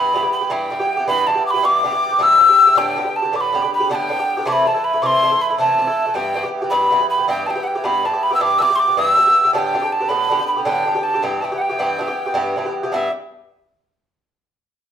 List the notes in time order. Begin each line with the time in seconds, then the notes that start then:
Already playing: G2 E3 B3 G4 B5
0.14 G2 E3 B3 G4
0.23 E3 B3 G4
0.33 B5
0.41 E3 B3 G4
0.50 G2 E3 B3 G4 G5
0.70 G2 E3 B3 G4
0.80 E3 B3 G4
0.97 E3 B3 G4
1.08 G2 E3 B3 G4 B5
1.27 G2 E3 B3 G4 A5
1.35 E3 B3 G4
1.47 D6
1.51 G4 B5
1.55 E3 B3
1.62 G2 E3 B3 G4 D6
1.83 G2 E3 B3 G4
1.92 E3 B3 G4
2.09 E3 B3 G4
2.19 G2 E3 B3 G4
2.23 E6
2.38 G2 E3 B3 G4
2.49 E3 B3 G4
2.66 E3 B3 G4
2.75 A2 D3 B3 G4 G5
2.96 A2 D3 B3 G4
3.04 D3 B3 G4
3.16 A5
3.22 D3 B3 G4
3.33 A2 D3 B3 G4 D6
3.41 B5
3.52 A2 D3 B3 G4
3.62 D3 B3 G4
3.74 B5
3.80 D3 B3 G4
3.89 A2 D3 B3 G4 A5
3.95 G5
4.09 A2 D3 B3 G4
4.19 D3 B3 G4
4.37 D3 B3 G4
4.45 C3 E3 A3 E4 D6
4.52 B5
4.65 C3 E3 A3 E4 A5
4.74 E3 A3 E4
4.84 B5
4.93 E3 A3 E4
5.02 C3 E3 A3 E4 D6
5.06 C6
5.22 C3 E3 A3 E4
5.32 E3 A3 E4
5.41 B5
5.50 E3 A3 E4
5.58 C3 E3 A3 E4 A5
5.78 C3 E3 A3 E4
5.87 E3 A3 E4
6.06 E3 A3 E4
6.14 G2 E3 B3 G4 G5
6.34 G2 E3 B3 G4
6.43 E3 B3 G4
6.62 E3 B3 G4
6.70 G2 E3 B3 G4 B5
6.91 G2 E3 B3 G4
7.00 E3 B3 G4
7.10 B5
7.18 E3 B3 G4
7.28 G2 E3 B3 G4 G5
7.46 G2 E3 B3 G4 G5 A5
7.55 E3 B3 G4
7.63 F#5 G5
7.75 E3 B3 G4
7.84 G2 E3 B3 G4 B5
8.03 G2 E3 B3 G4 A5
8.13 E3 B3 G4
8.23 B5
8.31 E3 B3 G4 E6
8.40 G2 E3 B3 G4 D6
8.59 G2 E3 B3 G4 D6 E6
8.70 E3 B3 G4
8.76 C6 D6
8.87 E3 B3 G4
8.97 G2 E3 B3 G4 E6
9.16 G2 E3 B3 G4
9.27 E3 B3 G4
9.44 E3 B3 G4
9.53 A2 D3 B3 G4 A5
9.58 G5
9.73 A2 D3 B3 G4
9.82 D3 B3 G4
9.92 A5
10.00 D3 B3 G4
10.09 A2 D3 B3 G4 B5
10.29 A2 D3 B3 G4
10.39 D3 B3 G4
10.47 B5
10.56 D3 B3 G4
10.64 A2 D3 B3 G4 G5
10.85 A2 D3 B3 G4
10.95 D3 B3 G4
11.03 A5
11.14 D3 B3 G4
11.22 G2 E3 B3 G4 G5
11.41 G2 E3 B3 G4 G5 A5
11.52 E3 B3 G4
11.58 F#5 G5
11.69 E3 B3 G4
11.79 G2 E3 B3 G4
11.98 G2 E3 B3 G4
12.08 E3 B3 G4
12.26 E3 B3 G4
12.34 G2 E3 B3 G4
12.56 G2 E3 B3 G4
12.65 E3 B3 G4
12.83 E3 B3 G4
12.92 G2 E3 B3 G4 E5